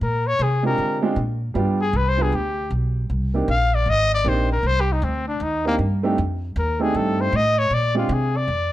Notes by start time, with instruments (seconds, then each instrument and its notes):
0.01 upright bass A#2, trumpet A#4
0.27 trumpet C#5
0.39 upright bass C3, trumpet G#4
0.63 grand piano G#3 C4 D4 F4 G4, trumpet A#4
0.78 upright bass D3
1.02 grand piano G#3 C4 D4 F4 G4
1.16 upright bass A#2
1.54 upright bass G2, grand piano G3 B3 D4 F4 G4
1.82 trumpet G#4
1.93 upright bass C2, trumpet B4
2.09 trumpet C5
2.17 grand piano G3 B3 D4 F4 G4
2.22 trumpet G#4
2.32 upright bass D2, trumpet G4
2.70 upright bass B1
3.10 upright bass C2
3.34 grand piano A#3 C4 D4 D#4 G4
3.48 upright bass A#1, trumpet F5
3.74 trumpet D5
3.86 upright bass G#1, trumpet D#5
4.14 trumpet D5
4.24 upright bass A#1, grand piano A#3 C4 D4 D#4 G4
4.29 trumpet C5
4.52 trumpet A#4
4.63 upright bass C2, trumpet C5
4.80 trumpet G4
4.92 trumpet D#4
5.02 upright bass D2, trumpet C4
5.28 trumpet D4
5.40 upright bass D#2, trumpet D#4
5.65 grand piano A#3 C4 D4 D#4 G4, trumpet A#3
5.79 upright bass G2
6.03 grand piano A3 C4 D4 D#4 G4
6.18 upright bass F2
6.56 upright bass D#2, trumpet A#4
6.79 grand piano A3 C4 D4 D#4 G4, trumpet G#4
6.94 upright bass G2, trumpet A4
7.21 trumpet C5
7.32 upright bass A2, trumpet D#5
7.59 trumpet C#5
7.70 upright bass A#2, trumpet D5
7.95 grand piano G#3 C4 D4 F4 G4, trumpet F4
8.09 upright bass C3, trumpet G#4
8.36 trumpet D5
8.48 upright bass F2